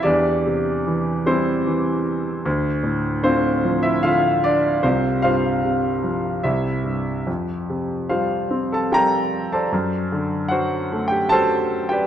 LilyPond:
<<
  \new Staff \with { instrumentName = "Grand piano" } { \time 3/4 \key c \mixolydian \tempo 4 = 75 <d' g' d''>4. <c' e' c''>4 r8 | r4 <c' f' c''>8. <e' e''>16 <f' f''>8 <d' d''>8 | <c' f' g' c''>8 <f' c'' f''>4. <e' g' c'' e''>8. r16 | r4 <f' c'' f''>8. <a' a''>16 <bes' g'' bes''>8. <a' c'' d'' a''>16~ |
<a' c'' d'' a''>16 r8. <fis' c'' fis''>8. <g' g''>16 <a' c'' a''>8. <g' b' d'' g''>16 | }
  \new Staff \with { instrumentName = "Grand piano" } { \clef bass \time 3/4 \key c \mixolydian e,8 c8 e8 g8 e4 | d,8 a,8 d8 f8 d4 | c,8 g,8 c8 f8 c,8 g,8 | f,8 c8 g8 c'8 g4 |
fis,8 d8 fis8 a8 fis4 | }
>>